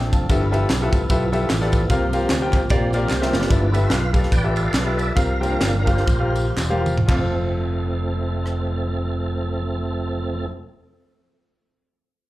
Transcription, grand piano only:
0.00 0.12 E5 medium
0.00 0.12 G5 medium
0.12 0.51 F5 medium
0.12 0.50 A5 medium
0.29 0.89 G2 medium
0.29 0.43 F4 medium
0.29 0.43 G4 medium
0.29 0.44 A4 medium
0.29 0.44 B4 medium
0.29 0.44 E5 loud
0.51 0.68 F4 medium
0.51 0.68 G4 medium
0.51 0.68 A4 medium
0.51 0.68 B4 medium
0.51 0.68 E5 loud
0.82 1.00 F4 medium
0.82 1.00 G4 medium
0.82 1.00 A4 medium
0.82 1.01 B4 medium
0.82 1.01 E5 loud
1.10 1.24 F4 loud
1.10 1.24 G4 medium
1.10 1.24 A4 medium
1.10 1.24 B4 medium
1.10 1.24 E5 loud
1.32 1.48 F4 loud
1.32 1.48 G4 medium
1.32 1.48 A4 medium
1.32 1.48 B4 medium
1.32 1.49 E5 loud
1.61 1.80 F4 loud
1.61 1.80 G4 medium
1.61 1.80 A4 medium
1.61 1.80 B4 medium
1.61 1.80 D5 loud
1.90 2.49 C3 medium
1.90 2.04 F4 medium
1.90 2.04 G4 medium
1.90 2.04 A#4 medium
1.90 2.04 C5 medium
1.90 2.04 F5 loud
2.13 2.29 F4 loud
2.13 2.29 G4 medium
2.13 2.29 A#4 medium
2.13 2.29 C5 medium
2.13 2.29 F5 loud
2.42 2.60 F4 medium
2.42 2.60 G4 medium
2.42 2.60 A#4 medium
2.42 2.60 C5 medium
2.42 2.61 G5 loud
2.70 2.84 F4 medium
2.70 2.84 G4 medium
2.70 2.85 A#4 medium
2.70 2.85 C5 medium
2.70 2.85 F5 loud
2.93 3.09 F4 loud
2.93 3.09 G4 medium
2.93 3.10 A#4 medium
2.93 3.10 C5 medium
2.93 3.09 D5 loud
3.21 3.40 F4 medium
3.21 3.40 G4 medium
3.21 3.40 A#4 medium
3.21 3.40 C5 medium
3.21 3.40 E5 loud
3.49 4.10 G2 medium
3.49 3.64 F4 medium
3.49 3.64 G4 medium
3.49 3.65 A4 medium
3.49 3.65 B4 medium
3.49 3.64 E5 medium
3.73 3.96 F4 medium
3.73 3.96 G4 medium
3.73 3.96 A4 medium
3.73 3.96 B4 medium
3.73 3.96 E5 medium
4.13 4.30 F4 medium
4.13 4.30 G4 medium
4.13 4.30 A4 medium
4.13 4.30 B4 medium
4.13 4.30 F5 medium
4.43 4.68 F4 medium
4.43 4.69 G4 medium
4.43 4.68 A4 medium
4.43 4.69 B4 medium
4.43 4.69 E5 medium
4.84 5.05 F4 medium
4.84 5.05 G4 medium
4.84 5.05 A4 medium
4.84 5.05 B4 medium
4.84 5.05 E5 medium
5.15 5.83 C3 medium
5.15 5.31 F4 medium
5.15 5.31 G4 medium
5.15 5.31 A#4 medium
5.15 5.31 C5 medium
5.15 5.32 F5 medium
5.40 5.66 F4 medium
5.40 5.66 G4 medium
5.40 5.66 A#4 medium
5.40 5.66 C5 medium
5.40 5.66 G5 medium
5.85 6.05 F4 medium
5.85 6.05 G4 medium
5.85 6.05 A#4 medium
5.85 6.05 C5 medium
5.85 6.05 F5 medium
6.19 6.49 F4 medium
6.19 6.50 G4 medium
6.19 6.50 A#4 medium
6.19 6.50 C5 medium
6.19 6.50 F5 medium
6.70 6.95 F4 medium
6.70 6.95 G4 medium
6.70 6.95 A#4 medium
6.70 6.95 C5 medium
6.70 6.95 F5 loud
7.06 10.45 F2 medium
7.06 10.43 F4 medium
7.06 10.44 A4 medium
7.06 10.46 C5 medium
7.10 10.47 F5 medium

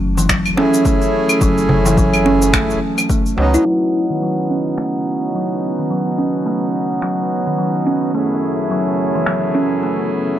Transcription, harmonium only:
0.55 2.78 A3 medium
0.55 2.78 C#4 medium
0.55 2.79 E4 medium
0.55 2.80 G#4 loud
3.37 3.93 F#3 loud
3.37 3.62 B3 medium
3.37 3.64 C#4 loud
3.37 3.65 D#4 loud
3.64 8.11 B3 medium
3.64 8.11 C#4 medium
3.64 8.12 D#4 medium
3.68 8.13 F#4 medium
8.13 10.39 F#2 medium
8.13 10.39 A3 medium
8.13 10.39 C#4 medium
8.13 10.39 E4 medium
8.13 10.39 G#4 medium

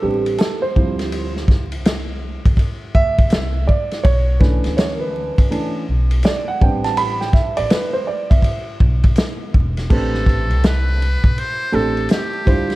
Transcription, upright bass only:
0.03 0.35 A1 medium
0.76 1.73 D2 medium
1.73 2.36 C2 medium
2.46 2.57 E2 medium
2.95 3.27 D2 medium
3.33 3.64 C2 medium
4.05 4.57 B1 loud
4.66 5.29 D2 medium
5.38 5.50 C#2 medium
5.89 6.20 B1 medium
6.62 7.45 A1 medium
7.58 7.70 A1 medium
8.31 8.43 C2 medium
8.81 9.13 B1 medium
9.55 9.86 E1 medium
9.91 10.51 A1 loud
10.51 11.14 C2 medium
11.24 11.36 B1 medium
11.74 12.05 A1 medium
12.47 12.75 D2 medium

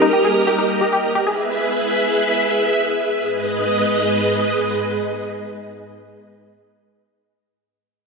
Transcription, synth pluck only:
0.02 0.09 D#4 medium
0.13 0.21 G4 medium
0.24 0.40 G#4 medium
0.47 0.55 G4 medium
0.59 0.74 D#4 medium
0.81 0.89 G4 medium
0.93 1.08 G4 medium
1.15 1.23 G4 medium
1.27 1.34 G#4 medium

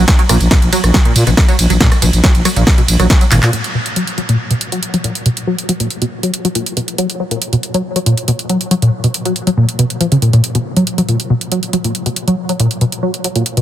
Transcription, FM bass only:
0.29 0.37 A#1 medium
0.41 0.48 A#1 medium
0.62 0.70 A#1 medium
0.84 0.91 A#1 medium
1.16 1.24 A#2 medium
1.27 1.34 A#1 medium
1.59 1.67 A#1 loud
1.70 1.78 A#1 medium
2.02 2.10 A#1 loud
2.13 2.21 A#1 medium
2.35 2.42 A#1 medium
2.56 2.64 A#1 medium
2.88 2.96 A#1 medium
3.00 3.07 A#1 medium
3.32 3.40 G#1 loud
3.43 3.50 A#2 medium

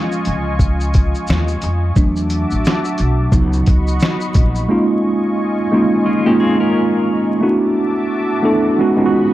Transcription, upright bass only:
0.27 1.11 C#2 medium
1.29 1.58 D#2 medium
1.63 1.92 F2 medium
1.97 2.43 E2 loud
2.52 2.63 A1 medium
3.00 3.29 B1 medium
3.33 3.62 C#2 loud
3.68 3.97 C#2 medium
4.36 4.65 A#1 medium

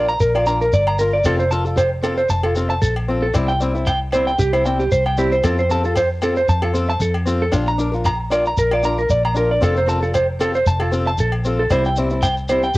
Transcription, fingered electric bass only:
0.00 0.17 A#1 loud
0.20 0.69 A#1 loud
0.73 1.22 G1 loud
1.26 2.26 F1 loud
2.30 2.79 F1 loud
2.82 3.31 A#1 loud
3.36 4.36 C2 loud
4.39 4.88 C2 medium
4.92 5.40 C2 loud
5.44 6.45 F2 loud
6.48 6.97 F2 medium
7.00 7.49 F2 loud
7.52 8.53 A#1 loud
8.57 9.06 A#1 medium
9.09 9.58 A#1 loud
9.62 10.63 F1 loud
10.66 11.15 F1 loud
11.19 11.67 A#1 loud
11.70 12.72 C2 loud

